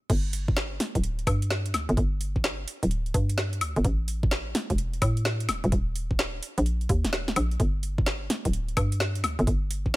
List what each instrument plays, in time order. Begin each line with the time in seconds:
0.10 fm bass G1, kick, closed hi-hat, crash
0.33 open hi-hat
0.48 kick
0.57 snare
0.80 snare, open hi-hat
0.95 fm bass D1, kick, closed hi-hat
1.04 closed hi-hat
1.19 closed hi-hat
1.27 fm bass G2, kick, open hi-hat, high woodblock
1.42 closed hi-hat
1.50 snare
1.66 closed hi-hat
1.74 fm bass D2, snare, open hi-hat, high woodblock
1.89 fm bass G1, closed hi-hat
1.97 fm bass G1, kick, closed hi-hat
2.21 open hi-hat
2.36 kick
2.44 snare
2.68 open hi-hat
2.83 fm bass D1, closed hi-hat
2.91 closed hi-hat
3.06 closed hi-hat
3.14 fm bass G2, kick, open hi-hat
3.29 closed hi-hat
3.38 snare
3.53 closed hi-hat
3.61 fm bass D2, open hi-hat, high woodblock
3.76 fm bass G1, closed hi-hat
3.84 fm bass A1, kick, closed hi-hat
4.08 open hi-hat
4.23 kick
4.31 snare
4.55 snare, open hi-hat
4.70 fm bass E1, kick, closed hi-hat
4.78 closed hi-hat
4.93 closed hi-hat
5.02 fm bass A2, kick, open hi-hat, high woodblock
5.17 closed hi-hat
5.25 snare
5.40 closed hi-hat
5.49 fm bass D#1, snare, open hi-hat, high woodblock
5.64 fm bass D#1, closed hi-hat
5.72 fm bass D#1, kick, closed hi-hat
5.96 open hi-hat
6.11 kick
6.19 snare
6.43 open hi-hat
6.58 fm bass A#1, closed hi-hat
6.66 closed hi-hat
6.81 closed hi-hat
6.89 fm bass D#2, kick, open hi-hat
7.05 fm bass D#1, snare, closed hi-hat
7.13 snare
7.28 snare, closed hi-hat
7.36 fm bass A#1, open hi-hat, high woodblock
7.51 closed hi-hat
7.60 fm bass G1, kick, closed hi-hat
7.83 open hi-hat
7.98 kick
8.06 snare
8.30 snare, open hi-hat
8.45 fm bass D1, kick, closed hi-hat
8.53 closed hi-hat
8.69 closed hi-hat
8.77 fm bass G2, kick, open hi-hat, high woodblock
8.92 closed hi-hat
9.00 snare
9.15 closed hi-hat
9.24 fm bass D2, snare, open hi-hat, high woodblock
9.39 fm bass G1, closed hi-hat
9.47 fm bass G1, kick, closed hi-hat
9.71 open hi-hat
9.86 kick